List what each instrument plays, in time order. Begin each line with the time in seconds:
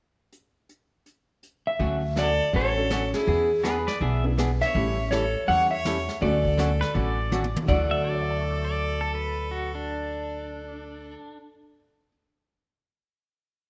0.33 closed hi-hat
0.69 closed hi-hat
1.06 closed hi-hat
1.43 closed hi-hat
1.67 electric slide guitar E5
1.79 upright bass D2, hollow-body jazz guitar D3 F#3 A3 C#4 F#4, brush sweep
2.16 hollow-body jazz guitar D3 F#3 A3 C#4 F#4, fiddle A4, electric slide guitar D5, snare, hi-hat pedal
2.53 upright bass A1, hollow-body jazz guitar D3 F#3 A3 C#4 F#4, fiddle A4, electric slide guitar C#5, brush sweep
2.76 honky-tonk piano C#4 D4 F#4 A4
2.90 hollow-body jazz guitar D3 F#3 A3 C#4 F#4, snare, hi-hat pedal
3.14 fiddle E4, electric slide guitar G#4, snare
3.27 upright bass E2, hollow-body jazz guitar E3 B3 D4 G#4, brush sweep
3.64 hollow-body jazz guitar E3 B3 D4 G#4, pedal steel guitar G#4 B4, snare, hi-hat pedal
3.87 pedal steel guitar B4 D5, snare
4.00 upright bass B1, hollow-body jazz guitar E3 B3 D4 G#4, pedal steel guitar E5, brush sweep
4.24 honky-tonk piano B3 D4 E4 G#4
4.38 hollow-body jazz guitar E3 B3 D4 G#4, snare, hi-hat pedal
4.61 fiddle C#5, electric slide guitar E5, snare
4.74 upright bass A1, hollow-body jazz guitar E3 G3 C#4 E4 A4, honky-tonk piano A3 C#4 E4 G4, brush sweep
5.11 hollow-body jazz guitar E3 G3 C#4 E4 A4, fiddle A4, electric slide guitar C#5, snare, hi-hat pedal
5.47 upright bass E2, hollow-body jazz guitar E3 G3 C#4 E4 A4, fiddle C#5, electric slide guitar F#5, brush sweep
5.71 fiddle C#5, electric slide guitar E5
5.85 hollow-body jazz guitar E3 G3 C#4 E4 A4, snare, hi-hat pedal
6.09 snare
6.21 upright bass D2, hollow-body jazz guitar D3 F#3 A3 C#4 F#4, honky-tonk piano A3 C#4 D4 F#4, fiddle A4, electric slide guitar D5, brush sweep
6.45 kick
6.58 hollow-body jazz guitar D3 F#3 A3 C#4 F#4, snare, hi-hat pedal
6.81 pedal steel guitar B4, snare
6.95 upright bass A1, hollow-body jazz guitar D3 F#3 A3 C#4 F#4, pedal steel guitar D5, brush sweep
7.32 hollow-body jazz guitar D3 F#3 A3 C#4 F#4, hi-hat pedal, high tom
7.44 high tom
7.56 high tom
7.62 honky-tonk piano D2 D3
7.68 upright bass D2, hollow-body jazz guitar D3 F#3 A3 F#4, honky-tonk piano D4 E4, fiddle A4, electric slide guitar D5, kick, floor tom
7.75 honky-tonk piano F#4
7.91 pedal steel guitar E5
8.04 honky-tonk piano A4, pedal steel guitar D5
8.13 honky-tonk piano C#5
8.21 honky-tonk piano E5
8.30 honky-tonk piano A5
8.40 honky-tonk piano C#6
8.51 honky-tonk piano E6
8.63 pedal steel guitar D5, honky-tonk piano A6
9.01 pedal steel guitar A4
9.15 pedal steel guitar B4
9.51 pedal steel guitar F#4
9.75 pedal steel guitar D4